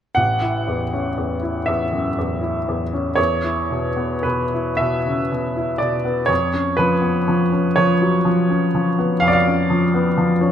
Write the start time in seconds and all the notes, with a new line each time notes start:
0.15 A1 F#5
0.41 E4
0.67 E2
0.93 C#4
1.17 E2
1.42 E4
1.66 E2 E5
1.93 F#2
2.18 E2
2.41 E4
2.68 E2
2.93 C#4
3.16 E2 C#5
3.44 E4
3.71 B2
3.97 B3
4.23 B2 B4
4.54 E4
4.77 B2 E5
5.06 C#3
5.32 B2
5.57 E4
5.78 B2 D5
6.05 B3
6.26 F2 C#5
6.54 C#4
6.77 F3 B4
7.02 B3
7.28 F3
7.52 C#4
7.76 F3 C#5
8.02 F#3
8.25 F3
8.50 C#4
8.75 F3
8.99 B3
9.20 F2 F5
9.28 D5
9.33 F5
9.47 C#4
9.70 F3
9.94 B3
10.17 F3
10.41 C#4